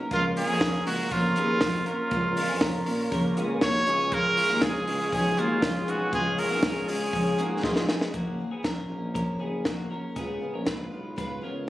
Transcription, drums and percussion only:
0.11 kick, hi-hat pedal, open hi-hat
0.36 hi-hat pedal, open hi-hat
0.61 kick, snare, hi-hat pedal, open hi-hat
0.86 hi-hat pedal, open hi-hat
1.11 kick, hi-hat pedal, open hi-hat
1.36 hi-hat pedal, open hi-hat
1.61 kick, snare, hi-hat pedal, open hi-hat
1.86 hi-hat pedal, open hi-hat
2.11 kick, hi-hat pedal, open hi-hat
2.36 hi-hat pedal, open hi-hat
2.61 kick, snare, hi-hat pedal, open hi-hat
2.86 hi-hat pedal, open hi-hat
3.12 kick, hi-hat pedal, open hi-hat
3.37 hi-hat pedal, open hi-hat
3.61 kick, snare, hi-hat pedal, open hi-hat
3.87 hi-hat pedal, open hi-hat
4.12 kick, hi-hat pedal, open hi-hat
4.37 hi-hat pedal, open hi-hat
4.62 kick, snare, hi-hat pedal, open hi-hat
4.87 hi-hat pedal, open hi-hat
5.12 kick, hi-hat pedal, open hi-hat
5.37 hi-hat pedal, open hi-hat
5.62 kick, snare, hi-hat pedal, open hi-hat
5.88 hi-hat pedal, open hi-hat
6.13 kick, hi-hat pedal, open hi-hat
6.38 hi-hat pedal, open hi-hat
6.63 kick, snare, hi-hat pedal, open hi-hat
6.88 hi-hat pedal, open hi-hat
7.13 kick, hi-hat pedal, open hi-hat
7.38 hi-hat pedal, open hi-hat
7.63 kick, snare
7.76 snare
7.89 snare
8.01 snare
8.14 kick, closed hi-hat
8.64 kick, snare, closed hi-hat
9.15 kick, closed hi-hat
9.65 kick, snare, closed hi-hat
10.16 kick, closed hi-hat
10.67 kick, snare, closed hi-hat
11.18 kick, closed hi-hat

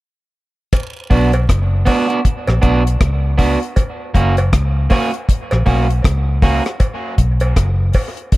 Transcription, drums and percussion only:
0.73 kick, closed hi-hat, cowbell, vibraslap
1.11 kick, open hi-hat
1.33 closed hi-hat, cowbell
1.49 kick, cross-stick, closed hi-hat
1.86 kick, open hi-hat, cowbell
2.10 closed hi-hat
2.25 kick, closed hi-hat
2.47 cross-stick, cowbell
2.63 kick, closed hi-hat
2.87 closed hi-hat
3.01 kick, cross-stick, closed hi-hat
3.39 kick, open hi-hat
3.63 closed hi-hat
3.76 kick, closed hi-hat, cowbell
4.15 kick, closed hi-hat
4.37 closed hi-hat, cowbell
4.53 kick, cross-stick, closed hi-hat
4.90 kick, open hi-hat, cowbell
5.14 closed hi-hat
5.29 kick, closed hi-hat
5.51 cross-stick, cowbell
5.66 kick, open hi-hat
5.90 closed hi-hat
6.04 kick, cross-stick, closed hi-hat
6.42 kick, open hi-hat
6.66 cross-stick, closed hi-hat
6.80 kick, closed hi-hat, cowbell
7.18 kick, closed hi-hat
7.40 closed hi-hat, cowbell
7.56 kick, cross-stick, closed hi-hat
7.93 kick, open hi-hat, cowbell
8.17 closed hi-hat
8.32 kick, closed hi-hat

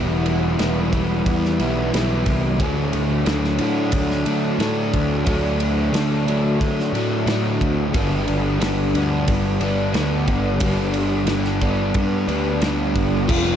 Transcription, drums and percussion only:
0.26 ride
0.59 snare, ride
0.93 kick, ride
1.26 kick, ride
1.45 snare
1.60 ride
1.94 snare, ride
2.26 kick, ride
2.60 kick, ride
2.93 ride
3.26 snare, ride
3.44 snare
3.59 ride
3.92 kick, ride
4.11 snare
4.26 ride
4.60 snare, ride
4.93 kick, ride
5.27 kick, ride
5.60 ride
5.94 snare, ride
6.28 ride
6.61 kick, ride
6.80 snare
6.95 ride
7.27 snare, ride
7.61 kick, ride
7.94 kick, ride
8.28 ride
8.61 snare, ride
8.95 ride
9.28 kick, ride
9.61 ride
9.94 snare, ride
10.28 kick, ride
10.60 kick, ride
10.94 ride
11.27 snare, ride
11.45 snare
11.61 kick, ride
11.94 kick, ride
12.29 ride
12.62 snare, ride
12.96 kick, ride
13.29 kick, crash

